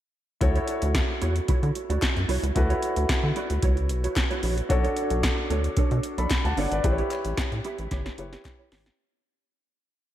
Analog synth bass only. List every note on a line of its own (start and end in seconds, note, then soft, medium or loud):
0.41 0.60 D2 loud
0.83 1.01 D2 loud
1.22 1.40 E2 medium
1.49 1.54 D3 soft
1.63 1.71 D3 medium
1.90 1.98 D2 medium
2.17 2.25 F#2 medium
2.29 2.38 C2 medium
2.43 2.52 C#2 medium
2.56 2.74 D2 loud
2.97 3.05 D2 loud
3.09 3.15 D3 soft
3.23 3.32 D3 loud
3.50 3.59 D2 medium
3.63 3.91 C#2 medium
3.89 4.08 B1 medium
4.43 4.61 A#1 loud
4.70 4.88 B1 loud
5.11 5.29 B1 loud
5.50 5.68 D2 medium
5.77 5.83 B2 soft
5.91 6.00 B2 loud
6.18 6.27 B1 medium
6.44 6.53 D2 medium
6.57 6.67 G1 loud
6.71 6.80 G#1 medium
6.84 7.02 A1 loud
7.25 7.34 A1 loud
7.38 7.43 A2 soft
7.52 7.61 A2 loud
7.79 7.87 A1 medium
7.91 8.10 G1 medium
8.18 8.37 F#1 medium
8.72 8.90 G#1 loud